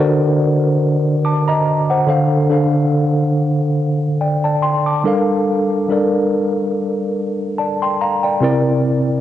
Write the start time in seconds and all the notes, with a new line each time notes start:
Already playing: D3 D4 D#5 F#5
0.00 F#4 A#4 C5 D5
1.25 A5 D6
1.48 D#5 A#5
1.90 C5 F#5
2.07 D3 D4 A4 C5 F5
2.50 D3 D4 A4 C5 F5
4.21 D5 G5
4.44 D5 A5
4.63 G5 C6
4.86 A5 D6
5.04 G3 D4 A4 A#4 F5
5.88 G3 D4 A4 A#4 D5
7.58 D5 A5
7.82 G5 C6
8.01 F5 A#5
8.23 D5 G5
8.40 C3 C4 E4 A#4 D5